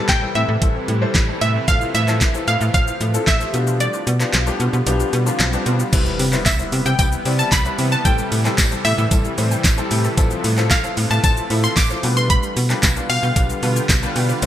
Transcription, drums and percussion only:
0.09 kick, snare, clap, closed hi-hat
0.35 closed hi-hat
0.62 kick, closed hi-hat
0.88 closed hi-hat
1.15 kick, snare, clap, closed hi-hat
1.41 closed hi-hat
1.68 kick, closed hi-hat, shaker
1.81 shaker
1.95 closed hi-hat, shaker
2.08 clap, shaker
2.21 kick, snare, clap, closed hi-hat, shaker
2.34 shaker
2.48 closed hi-hat, shaker
2.61 shaker
2.74 kick, closed hi-hat, shaker
2.88 shaker
3.01 closed hi-hat, shaker
3.14 shaker
3.27 kick, snare, clap, closed hi-hat, shaker
3.41 shaker
3.54 closed hi-hat, shaker
3.67 shaker
3.80 closed hi-hat, shaker
3.93 shaker
4.07 closed hi-hat, shaker
4.20 clap, shaker
4.33 snare, clap, closed hi-hat, shaker
4.47 shaker
4.60 closed hi-hat, shaker
4.73 shaker
4.87 closed hi-hat, shaker
5.00 shaker
5.13 closed hi-hat, shaker
5.27 shaker
5.40 snare, clap, closed hi-hat, shaker
5.53 shaker
5.66 closed hi-hat, shaker
5.80 shaker
5.93 kick, closed hi-hat, crash, shaker
6.06 shaker
6.19 open hi-hat, tambourine, shaker
6.33 clap, shaker
6.46 kick, snare, clap, closed hi-hat, tambourine, shaker
6.59 shaker
6.72 open hi-hat, tambourine, shaker
6.86 shaker
6.99 kick, closed hi-hat, tambourine, shaker
7.12 shaker
7.25 open hi-hat, tambourine, shaker
7.39 shaker
7.52 kick, snare, clap, closed hi-hat, tambourine, shaker
7.65 shaker
7.79 open hi-hat, tambourine, shaker
7.92 shaker
8.05 kick, closed hi-hat, tambourine, shaker
8.18 shaker
8.32 open hi-hat, tambourine, shaker
8.45 clap, shaker
8.58 kick, snare, clap, closed hi-hat, tambourine, shaker
8.71 shaker
8.85 open hi-hat, tambourine, shaker
8.98 shaker
9.11 kick, closed hi-hat, tambourine, shaker
9.25 shaker
9.38 open hi-hat, tambourine, shaker
9.51 shaker
9.64 kick, snare, clap, closed hi-hat, tambourine, shaker
9.78 shaker
9.91 open hi-hat, tambourine, shaker
10.04 shaker
10.18 kick, closed hi-hat, tambourine, shaker
10.31 shaker
10.44 open hi-hat, tambourine, shaker
10.57 clap, shaker
10.71 kick, snare, clap, closed hi-hat, tambourine, shaker
10.84 shaker
10.97 open hi-hat, tambourine, shaker
11.10 shaker
11.24 kick, closed hi-hat, tambourine, shaker
11.37 shaker
11.50 open hi-hat, tambourine, shaker
11.64 shaker
11.77 kick, snare, clap, closed hi-hat, tambourine, shaker
11.90 shaker
12.03 open hi-hat, tambourine, shaker
12.17 shaker
12.30 kick, closed hi-hat, shaker
12.43 shaker
12.57 open hi-hat, tambourine, shaker
12.70 clap, shaker
12.83 kick, snare, clap, closed hi-hat, tambourine, shaker
12.96 shaker
13.09 open hi-hat, tambourine, shaker
13.23 shaker
13.36 kick, closed hi-hat, tambourine, shaker
13.50 shaker
13.63 open hi-hat, tambourine, shaker
13.76 shaker
13.89 kick, snare, clap, closed hi-hat, tambourine, shaker
14.03 shaker
14.16 open hi-hat, tambourine, shaker
14.29 shaker
14.42 closed hi-hat, tambourine, shaker

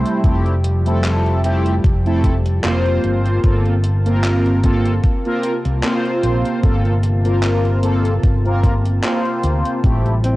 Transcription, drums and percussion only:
0.06 closed hi-hat
0.24 kick, closed hi-hat
0.46 closed hi-hat
0.64 closed hi-hat
0.86 closed hi-hat
1.04 clap, closed hi-hat
1.26 closed hi-hat
1.44 closed hi-hat
1.66 closed hi-hat
1.84 kick, closed hi-hat
2.06 closed hi-hat
2.24 kick, closed hi-hat
2.46 closed hi-hat
2.64 clap, closed hi-hat
2.86 closed hi-hat
3.04 closed hi-hat
3.26 closed hi-hat
3.44 kick, closed hi-hat
3.66 closed hi-hat
3.84 closed hi-hat
4.06 closed hi-hat
4.24 clap, closed hi-hat
4.46 closed hi-hat
4.63 kick, closed hi-hat
4.85 closed hi-hat
5.04 kick, closed hi-hat
5.25 closed hi-hat
5.44 closed hi-hat
5.65 closed hi-hat
5.83 clap, closed hi-hat
6.05 closed hi-hat
6.23 closed hi-hat
6.45 closed hi-hat
6.63 kick, closed hi-hat
6.85 closed hi-hat
7.03 closed hi-hat
7.25 closed hi-hat
7.43 clap, closed hi-hat
7.65 closed hi-hat
7.83 closed hi-hat
8.05 closed hi-hat
8.23 kick, closed hi-hat
8.45 closed hi-hat
8.63 kick, closed hi-hat
8.85 closed hi-hat
9.04 clap, closed hi-hat
9.25 closed hi-hat
9.43 closed hi-hat
9.65 closed hi-hat
9.84 kick, closed hi-hat
10.05 closed hi-hat
10.24 closed hi-hat

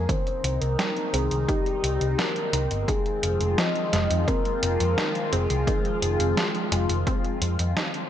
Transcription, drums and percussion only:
0.09 kick, closed hi-hat
0.27 closed hi-hat
0.44 closed hi-hat
0.62 closed hi-hat
0.79 snare, closed hi-hat
0.97 closed hi-hat
1.14 closed hi-hat
1.31 closed hi-hat
1.49 kick, closed hi-hat
1.66 closed hi-hat
1.84 closed hi-hat
2.01 closed hi-hat
2.19 snare, closed hi-hat
2.36 closed hi-hat
2.53 closed hi-hat
2.71 closed hi-hat
2.88 kick, closed hi-hat
3.06 closed hi-hat
3.23 closed hi-hat
3.41 closed hi-hat
3.58 snare, closed hi-hat
3.76 closed hi-hat
3.93 snare, closed hi-hat
4.11 closed hi-hat
4.28 kick, closed hi-hat
4.45 closed hi-hat
4.63 closed hi-hat
4.80 closed hi-hat
4.98 snare, closed hi-hat
5.15 closed hi-hat
5.33 closed hi-hat
5.50 closed hi-hat
5.67 kick, closed hi-hat
5.85 closed hi-hat
6.02 closed hi-hat
6.20 closed hi-hat
6.37 snare, closed hi-hat
6.55 closed hi-hat
6.72 closed hi-hat
6.89 closed hi-hat
7.07 kick, closed hi-hat
7.25 closed hi-hat
7.42 closed hi-hat
7.59 closed hi-hat
7.77 snare, closed hi-hat
7.94 closed hi-hat

